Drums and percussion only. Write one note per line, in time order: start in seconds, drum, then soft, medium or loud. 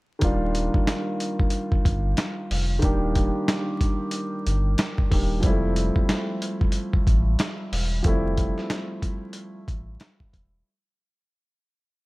0.21 kick loud
0.21 closed hi-hat medium
0.55 closed hi-hat medium
0.74 kick medium
0.87 snare loud
0.87 snare medium
0.87 closed hi-hat medium
1.20 closed hi-hat medium
1.40 kick medium
1.50 closed hi-hat medium
1.72 kick medium
1.85 kick loud
1.85 closed hi-hat medium
2.17 snare loud
2.17 snare medium
2.17 closed hi-hat medium
2.51 open hi-hat medium
2.82 kick loud
2.82 closed hi-hat medium
3.15 kick medium
3.15 closed hi-hat medium
3.48 snare loud
3.48 snare medium
3.48 closed hi-hat medium
3.81 kick medium
3.81 closed hi-hat medium
4.11 closed hi-hat medium
4.47 closed hi-hat medium
4.78 snare loud
4.78 snare medium
4.78 closed hi-hat medium
4.98 kick medium
5.12 kick medium
5.12 open hi-hat medium
5.43 kick loud
5.43 closed hi-hat medium
5.76 closed hi-hat medium
5.96 kick medium
6.09 snare loud
6.09 snare medium
6.09 closed hi-hat medium
6.42 closed hi-hat medium
6.61 kick loud
6.72 closed hi-hat medium
6.93 kick medium
7.07 kick loud
7.07 closed hi-hat medium
7.39 snare loud
7.39 snare medium
7.39 closed hi-hat medium
7.73 open hi-hat medium
8.04 kick loud
8.04 closed hi-hat medium
8.37 kick medium
8.37 closed hi-hat medium
8.58 snare soft
8.70 snare loud
8.70 snare medium
8.70 closed hi-hat medium
9.02 kick medium
9.02 closed hi-hat medium
9.33 closed hi-hat medium
9.68 kick loud
9.68 closed hi-hat medium
10.00 snare loud
10.00 snare medium
10.00 closed hi-hat medium
10.20 kick medium
10.33 kick medium
10.33 closed hi-hat medium